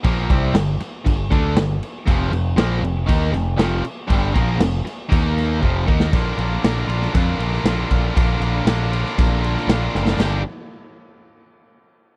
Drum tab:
CC |x-x-x-x-x-x-x-x-|x-x-x-x-x-x-x-x-|x-x-x-x-x-x-----|----------------|
RD |----------------|----------------|----------------|x-x-x-x-x-x-x-x-|
SD |----o-o-----o---|----o-----o-o---|----o-o---o----o|----o--o---oo---|
BD |o-o-----o-o-----|o-------o-------|o-o-----o---o-o-|o-------o-----o-|

CC |----------------|x---------------|
RD |x-x-x-x-x-x-x---|----------------|
SD |----o--o---oo-oo|o---------------|
BD |o-------o-------|----------------|